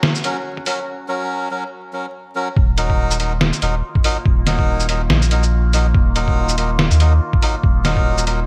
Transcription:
0.00 0.83 F#3 medium
0.00 0.83 C#4 medium
0.00 0.86 F#4 medium
0.00 snare loud
0.15 shaker medium
0.24 0.37 F#3 medium
0.24 0.37 C#4 medium
0.24 0.37 A#4 loud
0.24 closed hi-hat medium
0.57 kick loud
0.66 0.79 F#3 loud
0.66 0.79 C#4 medium
0.66 0.79 A#4 loud
0.66 open hi-hat loud
1.08 1.49 F#3 medium
1.08 1.49 C#4 medium
1.08 1.49 A#4 loud
1.51 1.64 F#3 medium
1.51 1.64 C#4 medium
1.51 1.64 A#4 medium
1.93 2.06 F#3 medium
1.93 2.06 C#4 medium
1.93 2.06 A#4 medium
2.35 2.48 F#3 loud
2.35 2.48 C#4 medium
2.35 2.48 A#4 loud
2.56 3.52 D#1 loud
2.56 8.46 D#3 medium
2.56 8.46 A#3 medium
2.56 8.46 F4 medium
2.56 kick loud
2.78 3.18 F#3 medium
2.78 3.18 D#4 medium
2.78 3.18 A#4 loud
2.78 closed hi-hat medium
2.90 kick medium
3.11 shaker medium
3.20 3.33 F#3 medium
3.20 3.33 D#4 medium
3.20 3.33 A#4 medium
3.20 closed hi-hat medium
3.41 snare loud
3.53 shaker medium
3.62 3.82 D#1 loud
3.62 3.75 F#3 medium
3.62 3.75 D#4 medium
3.62 3.75 A#4 loud
3.62 closed hi-hat medium
3.95 kick loud
4.04 4.17 F#3 loud
4.04 4.17 D#4 medium
4.04 4.17 A#4 loud
4.04 open hi-hat loud
4.25 5.09 D#1 loud
4.25 kick loud
4.47 4.87 F#3 medium
4.47 4.87 D#4 medium
4.47 4.87 A#4 loud
4.47 snare medium
4.47 closed hi-hat medium
4.59 kick medium
4.80 shaker medium
4.89 5.02 F#3 medium
4.89 5.02 D#4 medium
4.89 5.02 A#4 medium
4.89 closed hi-hat medium
5.10 5.93 A#1 medium
5.10 snare loud
5.22 shaker medium
5.31 5.44 F#3 medium
5.31 5.44 D#4 medium
5.31 5.44 A#4 medium
5.31 closed hi-hat medium
5.43 shaker medium
5.73 5.86 F#3 medium
5.73 5.86 D#4 medium
5.73 5.86 A#4 loud
5.73 open hi-hat medium
5.73 shaker medium
5.94 6.90 D#1 loud
5.94 kick loud
6.16 6.56 F#3 loud
6.16 6.56 D#4 medium
6.16 6.56 A#4 loud
6.16 closed hi-hat medium
6.28 kick medium
6.49 shaker medium
6.58 6.71 F#3 medium
6.58 6.71 D#4 medium
6.58 6.71 A#4 medium
6.58 closed hi-hat medium
6.79 snare loud
6.91 7.20 D#2 loud
6.91 shaker medium
7.00 7.13 F#3 medium
7.00 7.13 D#4 medium
7.00 7.13 A#4 loud
7.00 closed hi-hat medium
7.33 kick loud
7.42 7.55 F#3 medium
7.42 7.55 D#4 medium
7.42 7.55 A#4 loud
7.42 open hi-hat medium
7.63 8.46 D#1 loud
7.63 kick loud
7.85 8.25 F#3 medium
7.85 8.25 D#4 medium
7.85 8.25 A#4 loud
7.85 snare medium
7.85 closed hi-hat medium
7.97 kick medium
8.18 shaker medium
8.27 8.40 F#3 medium
8.27 8.40 D#4 medium
8.27 8.40 A#4 medium
8.27 closed hi-hat medium

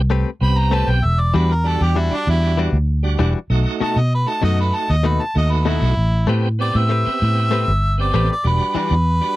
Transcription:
0.00 0.23 C2 medium
0.10 0.29 A3 medium
0.10 0.29 C4 medium
0.10 0.29 G4 medium
0.10 0.30 B4 medium
0.40 0.84 C2 loud
0.40 1.00 B3 medium
0.40 1.00 C4 medium
0.40 1.01 G4 medium
0.40 0.60 B5 medium
0.58 0.75 A#5 medium
0.71 0.90 A3 medium
0.71 0.91 C4 medium
0.71 0.91 G4 medium
0.71 0.91 B4 medium
0.71 0.91 A5 medium
0.88 1.02 B1 medium
0.88 1.06 G5 medium
1.03 1.31 E1 loud
1.03 1.21 E5 medium
1.20 1.37 D5 medium
1.34 1.77 E2 medium
1.34 1.52 E3 medium
1.34 1.54 G3 medium
1.34 1.53 G3 medium
1.34 1.54 D4 medium
1.34 1.53 D4 medium
1.34 1.54 F#4 medium
1.34 1.53 F#4 medium
1.34 1.53 B4 medium
1.52 1.69 A#4 medium
1.64 1.94 G3 medium
1.64 1.94 D4 medium
1.64 1.95 F#4 medium
1.64 1.84 A4 medium
1.81 2.09 E2 medium
1.81 2.00 G4 medium
1.95 2.14 E3 medium
1.95 2.15 G3 medium
1.95 2.15 D4 medium
1.95 2.16 E4 medium
1.95 2.15 F#4 medium
2.11 2.70 G3 medium
2.11 2.70 D4 medium
2.11 2.27 D4 loud
2.11 2.71 F#4 medium
2.11 muted fingered electric bass stroke soft
2.27 2.69 E2 medium
2.27 2.58 E4 medium
2.57 2.76 E3 medium
2.57 2.77 G3 medium
2.57 2.77 D4 medium
2.57 2.77 F#4 medium
2.73 3.15 D2 medium
3.03 3.33 G3 medium
3.03 3.34 D4 medium
3.03 3.34 F#4 medium
3.19 3.33 E1 loud
3.19 3.38 E3 medium
3.19 3.38 G3 medium
3.19 3.38 D4 medium
3.19 3.39 F#4 medium
3.50 3.64 B1 medium
3.50 3.99 A3 loud
3.50 4.00 D#4 medium
3.50 4.00 F#4 loud
3.81 4.00 B2 medium
3.81 4.00 A3 medium
3.81 4.00 D#4 medium
3.81 4.00 F#4 medium
3.81 3.99 A5 medium
3.81 muted fingered electric bass stroke soft
3.96 4.25 B2 medium
3.96 4.12 D#5 medium
4.14 4.30 B4 medium
4.26 4.96 A3 medium
4.26 4.97 D#4 medium
4.26 4.97 F#4 medium
4.26 4.42 A5 loud
4.42 4.71 F#2 medium
4.42 4.61 B2 medium
4.42 4.62 A3 medium
4.42 4.62 D#4 medium
4.42 4.62 F#4 medium
4.42 4.58 D#5 medium
4.60 4.77 B4 medium
4.75 4.92 A5 medium
4.90 5.18 D#2 medium
4.90 5.09 D#5 medium
5.03 5.23 B2 medium
5.03 5.23 A3 medium
5.03 5.24 D#4 medium
5.03 5.24 F#4 medium
5.03 5.24 B4 medium
5.23 5.36 A5 loud
5.35 5.78 D#2 loud
5.35 5.95 A3 medium
5.35 5.95 D#4 medium
5.35 5.95 F#4 medium
5.35 5.53 D#5 medium
5.52 5.70 B4 medium
5.65 5.85 B2 medium
5.65 5.85 A3 medium
5.65 5.85 D#4 medium
5.65 6.28 E4 loud
5.65 5.86 F#4 medium
5.82 5.96 B1 medium
5.97 6.26 A1 loud
6.27 6.71 A2 medium
6.27 6.46 A3 medium
6.27 6.48 B3 medium
6.27 6.47 C4 medium
6.27 6.49 C4 medium
6.27 6.47 G4 medium
6.27 6.49 G4 medium
6.27 6.48 B4 medium
6.59 6.89 B3 medium
6.59 6.89 C4 medium
6.59 6.90 G4 medium
6.59 6.78 D5 loud
6.75 7.03 A2 medium
6.75 7.96 E5 loud
6.89 7.08 A3 medium
6.89 7.09 C4 medium
6.89 7.09 G4 medium
6.89 7.10 B4 medium
7.05 7.65 B3 medium
7.05 7.65 C4 medium
7.05 7.65 G4 medium
7.05 muted fingered electric bass stroke soft
7.22 7.64 A2 loud
7.51 7.70 A3 medium
7.51 7.71 C4 medium
7.51 7.71 G4 medium
7.51 7.71 B4 medium
7.68 8.10 G1 loud
7.98 8.28 B3 medium
7.98 8.29 C4 medium
7.98 8.29 G4 medium
7.98 8.30 D5 medium
8.14 8.28 A1 loud
8.14 8.33 A3 medium
8.14 8.33 C4 medium
8.14 8.33 G4 medium
8.14 8.33 B4 medium
8.32 8.45 D5 loud
8.44 8.59 E1 medium
8.44 8.94 G3 medium
8.44 8.94 D4 medium
8.44 8.95 F#4 medium
8.44 8.76 B4 medium
8.75 8.94 E3 medium
8.75 8.95 G3 medium
8.75 8.95 D4 medium
8.75 8.95 F#4 medium
8.75 9.36 B4 loud
8.75 muted fingered electric bass stroke soft
8.91 9.19 E2 medium
9.21 9.36 G3 medium
9.21 9.36 D4 medium
9.21 9.36 F#4 medium

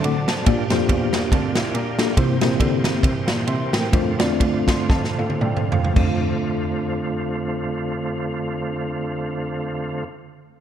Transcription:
0.00 0.24 D3 medium
0.00 0.46 F#3 medium
0.00 0.13 C4 loud
0.00 0.47 C4 medium
0.00 0.14 D4 medium
0.00 2.15 D4 medium
0.00 0.14 F#4 medium
0.00 0.14 A4 medium
0.00 0.46 A4 medium
0.04 0.41 A2 medium
0.04 0.28 F#5 medium
0.04 0.28 D6 medium
0.04 ride bell medium
0.28 0.69 C5 medium
0.28 0.69 A5 medium
0.28 snare loud
0.28 ride bell medium
0.46 0.67 A#2 loud
0.46 1.10 A#2 medium
0.46 3.89 A#3 medium
0.46 0.64 A#3 loud
0.46 0.64 D4 medium
0.46 2.15 F4 medium
0.46 0.65 F4 medium
0.46 3.89 G4 medium
0.46 0.65 G4 medium
0.46 0.65 D5 loud
0.46 kick loud
0.46 ride bell medium
0.70 0.87 F2 loud
0.70 1.30 A#3 loud
0.70 1.30 D4 medium
0.70 1.30 F4 medium
0.70 1.30 G4 medium
0.70 1.30 C5 loud
0.70 snare loud
0.70 ride bell medium
0.89 1.25 E2 loud
0.89 kick medium
0.89 ride bell medium
1.13 snare loud
1.13 ride bell medium
1.32 1.68 D2 medium
1.32 1.55 C4 medium
1.32 1.55 A4 medium
1.32 kick loud
1.32 ride bell medium
1.55 1.74 E4 medium
1.55 1.74 C5 medium
1.55 snare loud
1.55 ride bell soft
1.74 2.11 A#2 loud
1.74 2.15 D4 medium
1.74 2.15 A#4 medium
1.74 ride bell medium
1.98 2.12 A#3 medium
1.98 2.12 D4 medium
1.98 2.12 F4 medium
1.98 2.12 G4 medium
1.98 2.13 A4 loud
1.98 snare loud
1.98 ride bell medium
2.17 2.38 C3 loud
2.17 2.80 C3 medium
2.17 3.92 E3 medium
2.17 2.35 A#3 medium
2.17 2.35 C4 medium
2.17 5.93 C4 medium
2.17 2.35 E4 medium
2.17 2.35 G4 medium
2.17 2.35 C5 loud
2.17 kick loud
2.17 ride bell medium
2.41 2.57 A#2 loud
2.41 3.01 A#3 medium
2.41 3.01 C4 medium
2.41 3.02 E4 medium
2.41 3.02 G4 medium
2.41 3.02 C5 loud
2.41 snare loud
2.41 ride bell medium
2.60 2.97 D3 medium
2.60 kick medium
2.60 ride bell medium
2.84 snare loud
2.84 ride bell medium
3.03 3.25 C3 medium
3.03 kick loud
3.03 ride bell medium
3.28 3.44 A#2 loud
3.28 snare loud
3.28 ride bell medium
3.47 3.69 C3 medium
3.47 3.72 E5 medium
3.47 3.72 C6 medium
3.47 ride bell medium
3.73 3.90 A2 loud
3.73 4.18 A#4 medium
3.73 4.17 G5 medium
3.73 snare loud
3.73 ride bell medium
3.92 4.16 F2 loud
3.92 5.94 D3 medium
3.92 4.12 A3 medium
3.92 5.94 A3 medium
3.92 4.12 C4 medium
3.92 4.12 D4 medium
3.92 4.12 F4 medium
3.92 5.94 F4 medium
3.92 4.13 C5 loud
3.92 kick loud
3.92 ride bell medium
4.19 4.37 E2 medium
4.19 4.87 A3 medium
4.19 4.87 C4 medium
4.19 4.88 D4 medium
4.19 4.88 F4 medium
4.19 4.88 D5 loud
4.19 snare loud
4.19 ride bell medium
4.40 4.82 D2 medium
4.40 kick medium
4.40 ride bell medium
4.68 4.88 C6 medium
4.68 kick medium
4.68 snare loud
4.68 ride bell medium
4.89 5.14 F2 medium
4.89 5.17 A5 medium
4.89 kick loud
4.89 snare medium
5.04 snare medium
5.18 5.38 A2 medium
5.18 5.40 F5 medium
5.18 high tom medium
5.30 high tom medium
5.41 5.88 A2 loud
5.41 5.71 F4 medium
5.41 5.71 D5 medium
5.41 5.93 G5 medium
5.41 mid tom medium
5.57 mid tom medium
5.72 6.26 A4 medium
5.72 6.26 F5 medium
5.72 floor tom loud
5.84 floor tom loud
5.94 10.03 F2 medium
5.94 10.04 F2 medium
5.94 10.04 D3 medium
5.94 10.01 A3 medium
5.94 10.04 A3 medium
5.94 10.04 C4 medium
5.94 10.03 D4 medium
5.94 10.04 F4 medium
5.94 kick loud
5.94 crash medium
5.98 10.05 F4 medium
5.98 10.07 C5 medium

